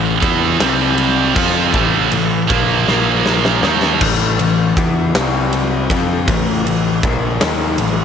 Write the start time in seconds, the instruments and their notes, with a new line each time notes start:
Already playing: picked electric bass A1, distorted electric guitar A2 E3
0.21 picked electric bass E2, distorted electric guitar E3 B3 E4, kick, ride
0.59 picked electric bass C2, distorted electric guitar C3 G3 C4, snare, ride
0.98 ride
1.34 picked electric bass F2, distorted electric guitar F3 C4 F4, kick, crash
1.73 picked electric bass A1, distorted electric guitar A2 E3 A3, kick
2.12 picked electric bass A1, distorted electric guitar A2 E3, ride
2.50 picked electric bass A#1, distorted electric guitar A#2 F3 A#3, kick, ride
2.87 picked electric bass A#1, distorted electric guitar A#2 F3 A#3, snare
3.26 snare
3.45 snare
3.63 picked electric bass D#2, distorted electric guitar D#3 A#3 D#4, snare
3.82 snare
4.01 picked electric bass A1, distorted electric guitar A2 E3 A3, kick, crash
4.39 picked electric bass A1, distorted electric guitar A2 E3, ride
4.77 picked electric bass E2, distorted electric guitar E3 B3 E4, kick, ride
5.15 picked electric bass C2, distorted electric guitar C3 G3 C4, snare, ride
5.53 ride
5.90 picked electric bass F2, distorted electric guitar F3 C4 F4, kick, ride
6.27 picked electric bass A1, distorted electric guitar A2 E3 A3, kick, ride
6.65 picked electric bass A1, distorted electric guitar A2 E3, ride
7.03 picked electric bass A#1, distorted electric guitar A#2 F3 A#3, kick, ride
7.41 picked electric bass D#2, distorted electric guitar D#3 A#3 D#4, snare, ride
7.78 picked electric bass A1, distorted electric guitar A2 E3, ride